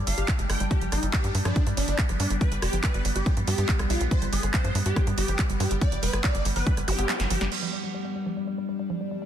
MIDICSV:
0, 0, Header, 1, 7, 480
1, 0, Start_track
1, 0, Key_signature, 1, "major"
1, 0, Tempo, 425532
1, 800, Time_signature, 4, 2, 24, 8
1, 10440, End_track
2, 0, Start_track
2, 0, Title_t, "Digital synth lead"
2, 0, Program_c, 0, 84
2, 79, Note_on_c, 0, 77, 98
2, 356, Note_off_c, 0, 77, 0
2, 559, Note_on_c, 0, 79, 89
2, 698, Note_off_c, 0, 79, 0
2, 799, Note_on_c, 0, 67, 100
2, 938, Note_off_c, 0, 67, 0
2, 1039, Note_on_c, 0, 63, 88
2, 1178, Note_off_c, 0, 63, 0
2, 1279, Note_on_c, 0, 67, 100
2, 1487, Note_off_c, 0, 67, 0
2, 1639, Note_on_c, 0, 62, 96
2, 1847, Note_off_c, 0, 62, 0
2, 1999, Note_on_c, 0, 62, 100
2, 2277, Note_off_c, 0, 62, 0
2, 2479, Note_on_c, 0, 62, 89
2, 2618, Note_off_c, 0, 62, 0
2, 2719, Note_on_c, 0, 71, 99
2, 2858, Note_off_c, 0, 71, 0
2, 2960, Note_on_c, 0, 67, 89
2, 3098, Note_off_c, 0, 67, 0
2, 3200, Note_on_c, 0, 71, 100
2, 3408, Note_off_c, 0, 71, 0
2, 3560, Note_on_c, 0, 67, 95
2, 3768, Note_off_c, 0, 67, 0
2, 3920, Note_on_c, 0, 67, 97
2, 4197, Note_off_c, 0, 67, 0
2, 4400, Note_on_c, 0, 65, 87
2, 4538, Note_off_c, 0, 65, 0
2, 4640, Note_on_c, 0, 72, 106
2, 4778, Note_off_c, 0, 72, 0
2, 4880, Note_on_c, 0, 68, 90
2, 5018, Note_off_c, 0, 68, 0
2, 5119, Note_on_c, 0, 72, 95
2, 5327, Note_off_c, 0, 72, 0
2, 5479, Note_on_c, 0, 67, 95
2, 5687, Note_off_c, 0, 67, 0
2, 5839, Note_on_c, 0, 67, 96
2, 6117, Note_off_c, 0, 67, 0
2, 6319, Note_on_c, 0, 67, 85
2, 6458, Note_off_c, 0, 67, 0
2, 6559, Note_on_c, 0, 74, 102
2, 6698, Note_off_c, 0, 74, 0
2, 6799, Note_on_c, 0, 71, 88
2, 6938, Note_off_c, 0, 71, 0
2, 7038, Note_on_c, 0, 74, 101
2, 7247, Note_off_c, 0, 74, 0
2, 7399, Note_on_c, 0, 71, 96
2, 7607, Note_off_c, 0, 71, 0
2, 7759, Note_on_c, 0, 67, 98
2, 8037, Note_off_c, 0, 67, 0
2, 8239, Note_on_c, 0, 67, 86
2, 8378, Note_off_c, 0, 67, 0
2, 10440, End_track
3, 0, Start_track
3, 0, Title_t, "Synth drone"
3, 0, Program_c, 1, 95
3, 0, Note_on_c, 1, 55, 83
3, 0, Note_on_c, 1, 62, 83
3, 800, Note_on_c, 1, 59, 83
3, 823, Note_off_c, 1, 62, 0
3, 8466, Note_off_c, 1, 55, 0
3, 8480, Note_on_c, 1, 55, 79
3, 8480, Note_on_c, 1, 62, 80
3, 8504, Note_off_c, 1, 59, 0
3, 10440, Note_off_c, 1, 55, 0
3, 10440, Note_off_c, 1, 62, 0
3, 10440, End_track
4, 0, Start_track
4, 0, Title_t, "Synth arpeggio sound"
4, 0, Program_c, 2, 84
4, 79, Note_on_c, 2, 55, 78
4, 119, Note_off_c, 2, 55, 0
4, 199, Note_on_c, 2, 67, 105
4, 297, Note_off_c, 2, 67, 0
4, 319, Note_on_c, 2, 55, 100
4, 358, Note_off_c, 2, 55, 0
4, 439, Note_on_c, 2, 56, 79
4, 505, Note_off_c, 2, 56, 0
4, 560, Note_on_c, 2, 56, 79
4, 658, Note_off_c, 2, 56, 0
4, 679, Note_on_c, 2, 55, 80
4, 745, Note_off_c, 2, 55, 0
4, 800, Note_on_c, 2, 55, 81
4, 865, Note_off_c, 2, 55, 0
4, 920, Note_on_c, 2, 53, 76
4, 1018, Note_off_c, 2, 53, 0
4, 1040, Note_on_c, 2, 55, 80
4, 1105, Note_off_c, 2, 55, 0
4, 1159, Note_on_c, 2, 55, 77
4, 1225, Note_off_c, 2, 55, 0
4, 1279, Note_on_c, 2, 55, 88
4, 1319, Note_off_c, 2, 55, 0
4, 1399, Note_on_c, 2, 55, 77
4, 1465, Note_off_c, 2, 55, 0
4, 1519, Note_on_c, 2, 55, 77
4, 1585, Note_off_c, 2, 55, 0
4, 1639, Note_on_c, 2, 53, 78
4, 1737, Note_off_c, 2, 53, 0
4, 1759, Note_on_c, 2, 55, 85
4, 1825, Note_off_c, 2, 55, 0
4, 1879, Note_on_c, 2, 55, 80
4, 1945, Note_off_c, 2, 55, 0
4, 1999, Note_on_c, 2, 55, 78
4, 2039, Note_off_c, 2, 55, 0
4, 2120, Note_on_c, 2, 55, 78
4, 2185, Note_off_c, 2, 55, 0
4, 2240, Note_on_c, 2, 55, 82
4, 2305, Note_off_c, 2, 55, 0
4, 2360, Note_on_c, 2, 53, 80
4, 2458, Note_off_c, 2, 53, 0
4, 2479, Note_on_c, 2, 55, 80
4, 2545, Note_off_c, 2, 55, 0
4, 2600, Note_on_c, 2, 55, 79
4, 2665, Note_off_c, 2, 55, 0
4, 2719, Note_on_c, 2, 55, 83
4, 2759, Note_off_c, 2, 55, 0
4, 2839, Note_on_c, 2, 55, 74
4, 2905, Note_off_c, 2, 55, 0
4, 2959, Note_on_c, 2, 55, 78
4, 3025, Note_off_c, 2, 55, 0
4, 3079, Note_on_c, 2, 53, 76
4, 3177, Note_off_c, 2, 53, 0
4, 3199, Note_on_c, 2, 55, 87
4, 3265, Note_off_c, 2, 55, 0
4, 3319, Note_on_c, 2, 55, 79
4, 3385, Note_off_c, 2, 55, 0
4, 3439, Note_on_c, 2, 55, 77
4, 3479, Note_off_c, 2, 55, 0
4, 3559, Note_on_c, 2, 55, 79
4, 3625, Note_off_c, 2, 55, 0
4, 3679, Note_on_c, 2, 55, 84
4, 3745, Note_off_c, 2, 55, 0
4, 3799, Note_on_c, 2, 53, 77
4, 3897, Note_off_c, 2, 53, 0
4, 3919, Note_on_c, 2, 55, 78
4, 3985, Note_off_c, 2, 55, 0
4, 4039, Note_on_c, 2, 55, 76
4, 4105, Note_off_c, 2, 55, 0
4, 4159, Note_on_c, 2, 55, 77
4, 4199, Note_off_c, 2, 55, 0
4, 4279, Note_on_c, 2, 55, 75
4, 4344, Note_off_c, 2, 55, 0
4, 4399, Note_on_c, 2, 55, 79
4, 4465, Note_off_c, 2, 55, 0
4, 4519, Note_on_c, 2, 53, 77
4, 4617, Note_off_c, 2, 53, 0
4, 4639, Note_on_c, 2, 55, 81
4, 4704, Note_off_c, 2, 55, 0
4, 4759, Note_on_c, 2, 55, 74
4, 4824, Note_off_c, 2, 55, 0
4, 4879, Note_on_c, 2, 55, 77
4, 4918, Note_off_c, 2, 55, 0
4, 4999, Note_on_c, 2, 55, 74
4, 5065, Note_off_c, 2, 55, 0
4, 5119, Note_on_c, 2, 55, 89
4, 5185, Note_off_c, 2, 55, 0
4, 5239, Note_on_c, 2, 53, 79
4, 5337, Note_off_c, 2, 53, 0
4, 5359, Note_on_c, 2, 55, 79
4, 5425, Note_off_c, 2, 55, 0
4, 5479, Note_on_c, 2, 55, 79
4, 5545, Note_off_c, 2, 55, 0
4, 5599, Note_on_c, 2, 55, 85
4, 5639, Note_off_c, 2, 55, 0
4, 5719, Note_on_c, 2, 55, 81
4, 5785, Note_off_c, 2, 55, 0
4, 5839, Note_on_c, 2, 55, 78
4, 5905, Note_off_c, 2, 55, 0
4, 5959, Note_on_c, 2, 53, 77
4, 6057, Note_off_c, 2, 53, 0
4, 6079, Note_on_c, 2, 55, 79
4, 6145, Note_off_c, 2, 55, 0
4, 6199, Note_on_c, 2, 55, 80
4, 6265, Note_off_c, 2, 55, 0
4, 6319, Note_on_c, 2, 55, 81
4, 6359, Note_off_c, 2, 55, 0
4, 6439, Note_on_c, 2, 55, 81
4, 6505, Note_off_c, 2, 55, 0
4, 6559, Note_on_c, 2, 55, 83
4, 6625, Note_off_c, 2, 55, 0
4, 6679, Note_on_c, 2, 53, 77
4, 6777, Note_off_c, 2, 53, 0
4, 6799, Note_on_c, 2, 55, 79
4, 6864, Note_off_c, 2, 55, 0
4, 6919, Note_on_c, 2, 55, 73
4, 6985, Note_off_c, 2, 55, 0
4, 7039, Note_on_c, 2, 55, 88
4, 7078, Note_off_c, 2, 55, 0
4, 7159, Note_on_c, 2, 55, 76
4, 7224, Note_off_c, 2, 55, 0
4, 7279, Note_on_c, 2, 55, 76
4, 7345, Note_off_c, 2, 55, 0
4, 7399, Note_on_c, 2, 53, 79
4, 7497, Note_off_c, 2, 53, 0
4, 7519, Note_on_c, 2, 55, 83
4, 7585, Note_off_c, 2, 55, 0
4, 7639, Note_on_c, 2, 55, 77
4, 7705, Note_off_c, 2, 55, 0
4, 7759, Note_on_c, 2, 55, 74
4, 7857, Note_off_c, 2, 55, 0
4, 7879, Note_on_c, 2, 59, 104
4, 7918, Note_off_c, 2, 59, 0
4, 7999, Note_on_c, 2, 59, 83
4, 8065, Note_off_c, 2, 59, 0
4, 8119, Note_on_c, 2, 55, 78
4, 8217, Note_off_c, 2, 55, 0
4, 8239, Note_on_c, 2, 53, 79
4, 8337, Note_off_c, 2, 53, 0
4, 8359, Note_on_c, 2, 55, 104
4, 8457, Note_off_c, 2, 55, 0
4, 8479, Note_on_c, 2, 55, 82
4, 8545, Note_off_c, 2, 55, 0
4, 8599, Note_on_c, 2, 53, 75
4, 8697, Note_off_c, 2, 53, 0
4, 8719, Note_on_c, 2, 55, 76
4, 8785, Note_off_c, 2, 55, 0
4, 8839, Note_on_c, 2, 55, 73
4, 8905, Note_off_c, 2, 55, 0
4, 8959, Note_on_c, 2, 55, 85
4, 8999, Note_off_c, 2, 55, 0
4, 9079, Note_on_c, 2, 55, 75
4, 9145, Note_off_c, 2, 55, 0
4, 9199, Note_on_c, 2, 55, 74
4, 9265, Note_off_c, 2, 55, 0
4, 9319, Note_on_c, 2, 53, 75
4, 9417, Note_off_c, 2, 53, 0
4, 9439, Note_on_c, 2, 55, 81
4, 9505, Note_off_c, 2, 55, 0
4, 9559, Note_on_c, 2, 55, 77
4, 9625, Note_off_c, 2, 55, 0
4, 9679, Note_on_c, 2, 55, 77
4, 9718, Note_off_c, 2, 55, 0
4, 9799, Note_on_c, 2, 55, 75
4, 9865, Note_off_c, 2, 55, 0
4, 9919, Note_on_c, 2, 55, 78
4, 9985, Note_off_c, 2, 55, 0
4, 10039, Note_on_c, 2, 53, 78
4, 10137, Note_off_c, 2, 53, 0
4, 10159, Note_on_c, 2, 55, 77
4, 10225, Note_off_c, 2, 55, 0
4, 10279, Note_on_c, 2, 55, 79
4, 10345, Note_off_c, 2, 55, 0
4, 10399, Note_on_c, 2, 55, 79
4, 10439, Note_off_c, 2, 55, 0
4, 10440, End_track
5, 0, Start_track
5, 0, Title_t, "Analog synth bass"
5, 0, Program_c, 3, 38
5, 79, Note_on_c, 3, 31, 99
5, 158, Note_off_c, 3, 31, 0
5, 199, Note_on_c, 3, 31, 91
5, 278, Note_off_c, 3, 31, 0
5, 439, Note_on_c, 3, 31, 88
5, 518, Note_off_c, 3, 31, 0
5, 559, Note_on_c, 3, 31, 99
5, 638, Note_off_c, 3, 31, 0
5, 679, Note_on_c, 3, 31, 93
5, 758, Note_off_c, 3, 31, 0
5, 919, Note_on_c, 3, 31, 89
5, 998, Note_off_c, 3, 31, 0
5, 1039, Note_on_c, 3, 31, 100
5, 1118, Note_off_c, 3, 31, 0
5, 1159, Note_on_c, 3, 31, 90
5, 1238, Note_off_c, 3, 31, 0
5, 1399, Note_on_c, 3, 43, 85
5, 1478, Note_off_c, 3, 43, 0
5, 1519, Note_on_c, 3, 43, 99
5, 1598, Note_off_c, 3, 43, 0
5, 1639, Note_on_c, 3, 43, 91
5, 1718, Note_off_c, 3, 43, 0
5, 1879, Note_on_c, 3, 43, 88
5, 1958, Note_off_c, 3, 43, 0
5, 1999, Note_on_c, 3, 31, 101
5, 2078, Note_off_c, 3, 31, 0
5, 2119, Note_on_c, 3, 31, 94
5, 2198, Note_off_c, 3, 31, 0
5, 2359, Note_on_c, 3, 31, 89
5, 2438, Note_off_c, 3, 31, 0
5, 2479, Note_on_c, 3, 43, 99
5, 2558, Note_off_c, 3, 43, 0
5, 2599, Note_on_c, 3, 31, 94
5, 2678, Note_off_c, 3, 31, 0
5, 2839, Note_on_c, 3, 31, 88
5, 2918, Note_off_c, 3, 31, 0
5, 2959, Note_on_c, 3, 29, 99
5, 3038, Note_off_c, 3, 29, 0
5, 3079, Note_on_c, 3, 31, 91
5, 3158, Note_off_c, 3, 31, 0
5, 3319, Note_on_c, 3, 31, 90
5, 3398, Note_off_c, 3, 31, 0
5, 3439, Note_on_c, 3, 31, 98
5, 3518, Note_off_c, 3, 31, 0
5, 3559, Note_on_c, 3, 31, 91
5, 3638, Note_off_c, 3, 31, 0
5, 3799, Note_on_c, 3, 43, 85
5, 3878, Note_off_c, 3, 43, 0
5, 3919, Note_on_c, 3, 43, 99
5, 3998, Note_off_c, 3, 43, 0
5, 4039, Note_on_c, 3, 43, 93
5, 4118, Note_off_c, 3, 43, 0
5, 4279, Note_on_c, 3, 35, 91
5, 4358, Note_off_c, 3, 35, 0
5, 4399, Note_on_c, 3, 35, 102
5, 4478, Note_off_c, 3, 35, 0
5, 4519, Note_on_c, 3, 35, 91
5, 4598, Note_off_c, 3, 35, 0
5, 4759, Note_on_c, 3, 31, 91
5, 4838, Note_off_c, 3, 31, 0
5, 4879, Note_on_c, 3, 31, 99
5, 4958, Note_off_c, 3, 31, 0
5, 4999, Note_on_c, 3, 31, 90
5, 5078, Note_off_c, 3, 31, 0
5, 5239, Note_on_c, 3, 43, 87
5, 5318, Note_off_c, 3, 43, 0
5, 5359, Note_on_c, 3, 43, 101
5, 5438, Note_off_c, 3, 43, 0
5, 5479, Note_on_c, 3, 43, 91
5, 5558, Note_off_c, 3, 43, 0
5, 5719, Note_on_c, 3, 43, 84
5, 5798, Note_off_c, 3, 43, 0
5, 5839, Note_on_c, 3, 31, 102
5, 5918, Note_off_c, 3, 31, 0
5, 5959, Note_on_c, 3, 31, 93
5, 6038, Note_off_c, 3, 31, 0
5, 6199, Note_on_c, 3, 31, 84
5, 6278, Note_off_c, 3, 31, 0
5, 6319, Note_on_c, 3, 43, 103
5, 6398, Note_off_c, 3, 43, 0
5, 6439, Note_on_c, 3, 31, 95
5, 6518, Note_off_c, 3, 31, 0
5, 6679, Note_on_c, 3, 31, 87
5, 6758, Note_off_c, 3, 31, 0
5, 6799, Note_on_c, 3, 29, 101
5, 6878, Note_off_c, 3, 29, 0
5, 6919, Note_on_c, 3, 31, 87
5, 6998, Note_off_c, 3, 31, 0
5, 7159, Note_on_c, 3, 31, 88
5, 7238, Note_off_c, 3, 31, 0
5, 7279, Note_on_c, 3, 31, 97
5, 7358, Note_off_c, 3, 31, 0
5, 7399, Note_on_c, 3, 31, 92
5, 7478, Note_off_c, 3, 31, 0
5, 7639, Note_on_c, 3, 31, 87
5, 7718, Note_off_c, 3, 31, 0
5, 7759, Note_on_c, 3, 31, 103
5, 7838, Note_off_c, 3, 31, 0
5, 7879, Note_on_c, 3, 31, 93
5, 7958, Note_off_c, 3, 31, 0
5, 8119, Note_on_c, 3, 31, 88
5, 8198, Note_off_c, 3, 31, 0
5, 8239, Note_on_c, 3, 31, 104
5, 8318, Note_off_c, 3, 31, 0
5, 8359, Note_on_c, 3, 31, 94
5, 8438, Note_off_c, 3, 31, 0
5, 10440, End_track
6, 0, Start_track
6, 0, Title_t, "Zap"
6, 0, Program_c, 4, 103
6, 7759, Note_on_c, 4, 60, 62
6, 7879, Note_off_c, 4, 60, 0
6, 10440, End_track
7, 0, Start_track
7, 0, Title_t, "Drums"
7, 79, Note_on_c, 9, 46, 110
7, 192, Note_off_c, 9, 46, 0
7, 199, Note_on_c, 9, 42, 62
7, 312, Note_off_c, 9, 42, 0
7, 319, Note_on_c, 9, 36, 123
7, 319, Note_on_c, 9, 39, 114
7, 319, Note_on_c, 9, 42, 63
7, 432, Note_off_c, 9, 36, 0
7, 432, Note_off_c, 9, 39, 0
7, 432, Note_off_c, 9, 42, 0
7, 439, Note_on_c, 9, 42, 66
7, 552, Note_off_c, 9, 42, 0
7, 559, Note_on_c, 9, 37, 82
7, 559, Note_on_c, 9, 46, 110
7, 672, Note_off_c, 9, 37, 0
7, 672, Note_off_c, 9, 46, 0
7, 680, Note_on_c, 9, 42, 64
7, 792, Note_off_c, 9, 42, 0
7, 799, Note_on_c, 9, 36, 123
7, 799, Note_on_c, 9, 42, 66
7, 912, Note_off_c, 9, 36, 0
7, 912, Note_off_c, 9, 42, 0
7, 919, Note_on_c, 9, 42, 65
7, 1032, Note_off_c, 9, 42, 0
7, 1039, Note_on_c, 9, 37, 43
7, 1039, Note_on_c, 9, 46, 109
7, 1152, Note_off_c, 9, 37, 0
7, 1152, Note_off_c, 9, 46, 0
7, 1159, Note_on_c, 9, 42, 64
7, 1272, Note_off_c, 9, 42, 0
7, 1279, Note_on_c, 9, 36, 114
7, 1279, Note_on_c, 9, 39, 123
7, 1279, Note_on_c, 9, 42, 66
7, 1392, Note_off_c, 9, 36, 0
7, 1392, Note_off_c, 9, 39, 0
7, 1392, Note_off_c, 9, 42, 0
7, 1399, Note_on_c, 9, 42, 65
7, 1512, Note_off_c, 9, 42, 0
7, 1519, Note_on_c, 9, 46, 111
7, 1632, Note_off_c, 9, 46, 0
7, 1639, Note_on_c, 9, 37, 82
7, 1639, Note_on_c, 9, 42, 63
7, 1752, Note_off_c, 9, 37, 0
7, 1752, Note_off_c, 9, 42, 0
7, 1759, Note_on_c, 9, 36, 118
7, 1759, Note_on_c, 9, 42, 62
7, 1872, Note_off_c, 9, 36, 0
7, 1872, Note_off_c, 9, 42, 0
7, 1879, Note_on_c, 9, 42, 63
7, 1992, Note_off_c, 9, 42, 0
7, 1999, Note_on_c, 9, 46, 102
7, 2112, Note_off_c, 9, 46, 0
7, 2119, Note_on_c, 9, 42, 64
7, 2232, Note_off_c, 9, 42, 0
7, 2239, Note_on_c, 9, 36, 127
7, 2239, Note_on_c, 9, 39, 114
7, 2239, Note_on_c, 9, 42, 62
7, 2352, Note_off_c, 9, 36, 0
7, 2352, Note_off_c, 9, 39, 0
7, 2352, Note_off_c, 9, 42, 0
7, 2359, Note_on_c, 9, 37, 44
7, 2359, Note_on_c, 9, 42, 65
7, 2472, Note_off_c, 9, 37, 0
7, 2472, Note_off_c, 9, 42, 0
7, 2479, Note_on_c, 9, 46, 109
7, 2592, Note_off_c, 9, 46, 0
7, 2599, Note_on_c, 9, 42, 61
7, 2712, Note_off_c, 9, 42, 0
7, 2719, Note_on_c, 9, 36, 112
7, 2719, Note_on_c, 9, 42, 65
7, 2832, Note_off_c, 9, 36, 0
7, 2832, Note_off_c, 9, 42, 0
7, 2839, Note_on_c, 9, 42, 67
7, 2952, Note_off_c, 9, 42, 0
7, 2959, Note_on_c, 9, 37, 89
7, 2959, Note_on_c, 9, 46, 107
7, 3072, Note_off_c, 9, 37, 0
7, 3072, Note_off_c, 9, 46, 0
7, 3079, Note_on_c, 9, 42, 64
7, 3192, Note_off_c, 9, 42, 0
7, 3199, Note_on_c, 9, 36, 111
7, 3199, Note_on_c, 9, 39, 119
7, 3199, Note_on_c, 9, 42, 66
7, 3312, Note_off_c, 9, 36, 0
7, 3312, Note_off_c, 9, 39, 0
7, 3312, Note_off_c, 9, 42, 0
7, 3320, Note_on_c, 9, 42, 64
7, 3433, Note_off_c, 9, 42, 0
7, 3440, Note_on_c, 9, 46, 108
7, 3553, Note_off_c, 9, 46, 0
7, 3560, Note_on_c, 9, 42, 66
7, 3673, Note_off_c, 9, 42, 0
7, 3679, Note_on_c, 9, 36, 115
7, 3680, Note_on_c, 9, 37, 39
7, 3680, Note_on_c, 9, 42, 64
7, 3792, Note_off_c, 9, 36, 0
7, 3793, Note_off_c, 9, 37, 0
7, 3793, Note_off_c, 9, 42, 0
7, 3800, Note_on_c, 9, 42, 65
7, 3912, Note_off_c, 9, 42, 0
7, 3920, Note_on_c, 9, 46, 99
7, 4032, Note_off_c, 9, 46, 0
7, 4040, Note_on_c, 9, 42, 67
7, 4152, Note_off_c, 9, 42, 0
7, 4159, Note_on_c, 9, 36, 120
7, 4159, Note_on_c, 9, 39, 116
7, 4159, Note_on_c, 9, 42, 68
7, 4272, Note_off_c, 9, 36, 0
7, 4272, Note_off_c, 9, 39, 0
7, 4272, Note_off_c, 9, 42, 0
7, 4280, Note_on_c, 9, 37, 86
7, 4280, Note_on_c, 9, 42, 67
7, 4392, Note_off_c, 9, 37, 0
7, 4392, Note_off_c, 9, 42, 0
7, 4400, Note_on_c, 9, 46, 100
7, 4512, Note_off_c, 9, 46, 0
7, 4519, Note_on_c, 9, 42, 65
7, 4632, Note_off_c, 9, 42, 0
7, 4639, Note_on_c, 9, 36, 113
7, 4639, Note_on_c, 9, 42, 72
7, 4752, Note_off_c, 9, 36, 0
7, 4752, Note_off_c, 9, 42, 0
7, 4759, Note_on_c, 9, 42, 70
7, 4872, Note_off_c, 9, 42, 0
7, 4879, Note_on_c, 9, 46, 104
7, 4992, Note_off_c, 9, 46, 0
7, 5000, Note_on_c, 9, 37, 40
7, 5000, Note_on_c, 9, 42, 67
7, 5112, Note_off_c, 9, 37, 0
7, 5112, Note_off_c, 9, 42, 0
7, 5119, Note_on_c, 9, 36, 116
7, 5119, Note_on_c, 9, 39, 120
7, 5119, Note_on_c, 9, 42, 68
7, 5232, Note_off_c, 9, 36, 0
7, 5232, Note_off_c, 9, 39, 0
7, 5232, Note_off_c, 9, 42, 0
7, 5240, Note_on_c, 9, 42, 69
7, 5352, Note_off_c, 9, 42, 0
7, 5360, Note_on_c, 9, 46, 104
7, 5472, Note_off_c, 9, 46, 0
7, 5479, Note_on_c, 9, 42, 66
7, 5592, Note_off_c, 9, 42, 0
7, 5599, Note_on_c, 9, 36, 111
7, 5599, Note_on_c, 9, 37, 80
7, 5599, Note_on_c, 9, 42, 65
7, 5712, Note_off_c, 9, 36, 0
7, 5712, Note_off_c, 9, 37, 0
7, 5712, Note_off_c, 9, 42, 0
7, 5719, Note_on_c, 9, 42, 68
7, 5832, Note_off_c, 9, 42, 0
7, 5839, Note_on_c, 9, 46, 103
7, 5952, Note_off_c, 9, 46, 0
7, 5959, Note_on_c, 9, 42, 65
7, 6072, Note_off_c, 9, 42, 0
7, 6079, Note_on_c, 9, 36, 114
7, 6079, Note_on_c, 9, 39, 121
7, 6079, Note_on_c, 9, 42, 67
7, 6192, Note_off_c, 9, 36, 0
7, 6192, Note_off_c, 9, 39, 0
7, 6192, Note_off_c, 9, 42, 0
7, 6199, Note_on_c, 9, 42, 72
7, 6312, Note_off_c, 9, 42, 0
7, 6319, Note_on_c, 9, 37, 41
7, 6319, Note_on_c, 9, 46, 102
7, 6432, Note_off_c, 9, 37, 0
7, 6432, Note_off_c, 9, 46, 0
7, 6439, Note_on_c, 9, 42, 68
7, 6552, Note_off_c, 9, 42, 0
7, 6559, Note_on_c, 9, 36, 117
7, 6559, Note_on_c, 9, 42, 71
7, 6672, Note_off_c, 9, 36, 0
7, 6672, Note_off_c, 9, 42, 0
7, 6679, Note_on_c, 9, 42, 72
7, 6792, Note_off_c, 9, 42, 0
7, 6799, Note_on_c, 9, 46, 109
7, 6912, Note_off_c, 9, 46, 0
7, 6919, Note_on_c, 9, 37, 75
7, 6919, Note_on_c, 9, 42, 65
7, 7032, Note_off_c, 9, 37, 0
7, 7032, Note_off_c, 9, 42, 0
7, 7039, Note_on_c, 9, 36, 112
7, 7039, Note_on_c, 9, 39, 127
7, 7039, Note_on_c, 9, 42, 74
7, 7152, Note_off_c, 9, 36, 0
7, 7152, Note_off_c, 9, 39, 0
7, 7152, Note_off_c, 9, 42, 0
7, 7159, Note_on_c, 9, 42, 71
7, 7272, Note_off_c, 9, 42, 0
7, 7279, Note_on_c, 9, 46, 103
7, 7392, Note_off_c, 9, 46, 0
7, 7399, Note_on_c, 9, 46, 59
7, 7512, Note_off_c, 9, 46, 0
7, 7519, Note_on_c, 9, 36, 116
7, 7519, Note_on_c, 9, 42, 66
7, 7632, Note_off_c, 9, 36, 0
7, 7632, Note_off_c, 9, 42, 0
7, 7639, Note_on_c, 9, 37, 38
7, 7639, Note_on_c, 9, 42, 72
7, 7752, Note_off_c, 9, 37, 0
7, 7752, Note_off_c, 9, 42, 0
7, 7759, Note_on_c, 9, 46, 102
7, 7872, Note_off_c, 9, 46, 0
7, 7880, Note_on_c, 9, 42, 66
7, 7992, Note_off_c, 9, 42, 0
7, 7999, Note_on_c, 9, 38, 61
7, 7999, Note_on_c, 9, 39, 119
7, 7999, Note_on_c, 9, 42, 71
7, 8112, Note_off_c, 9, 38, 0
7, 8112, Note_off_c, 9, 39, 0
7, 8112, Note_off_c, 9, 42, 0
7, 8119, Note_on_c, 9, 38, 66
7, 8119, Note_on_c, 9, 42, 73
7, 8232, Note_off_c, 9, 38, 0
7, 8232, Note_off_c, 9, 42, 0
7, 8239, Note_on_c, 9, 46, 102
7, 8352, Note_off_c, 9, 46, 0
7, 8359, Note_on_c, 9, 38, 84
7, 8359, Note_on_c, 9, 42, 72
7, 8472, Note_off_c, 9, 38, 0
7, 8472, Note_off_c, 9, 42, 0
7, 8479, Note_on_c, 9, 49, 86
7, 8592, Note_off_c, 9, 49, 0
7, 10440, End_track
0, 0, End_of_file